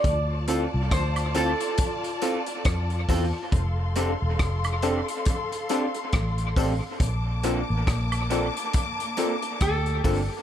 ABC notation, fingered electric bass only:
X:1
M:4/4
L:1/16
Q:"Swing 16ths" 1/4=69
K:F
V:1 name="Fingered electric bass" clef=bass
D,,3 C,, D,,3 z4 z F,,2 E,, z | F,,,3 E,,, F,,,3 z4 z A,,,2 A,,, z | B,,,3 A,,, B,,,3 z4 z D,,2 G,,, z |]